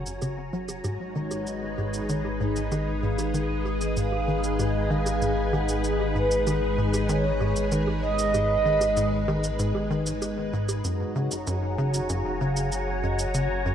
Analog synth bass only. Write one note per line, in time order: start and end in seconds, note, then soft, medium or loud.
0.22 0.52 C#3 medium
0.53 0.83 F#3 medium
0.84 0.98 G#2 medium
1.15 1.45 D#3 medium
1.78 2.01 G#2 medium
2.09 2.23 D#3 medium
2.40 2.70 G#2 medium
2.71 2.94 D#3 medium
3.03 3.17 G#2 medium
3.34 3.64 D#3 medium
3.97 4.19 G#2 medium
4.28 4.42 D#3 medium
4.59 4.89 G#2 loud
4.90 5.13 D#3 loud
5.22 5.35 G#2 medium
5.53 5.83 D#3 medium
6.15 6.38 G#2 medium
6.47 6.60 D#3 medium
6.78 7.08 G#2 loud
7.09 7.32 D#3 loud
7.40 7.54 G#2 medium
7.72 8.01 D#3 medium
8.34 8.57 G#2 medium
8.65 8.79 D#3 medium
8.97 9.26 G#2 loud
9.28 9.51 D#3 loud
9.59 9.73 G#2 medium
9.90 10.13 D#3 medium
10.53 10.83 G#2 medium
10.84 11.07 F#2 medium
11.16 11.29 C#3 medium
11.47 11.77 F#2 loud
11.78 12.01 C#3 loud
12.09 12.23 F#2 medium
12.41 12.70 C#3 medium
13.03 13.26 F#2 medium
13.34 13.48 C#3 medium
13.66 13.75 F#2 loud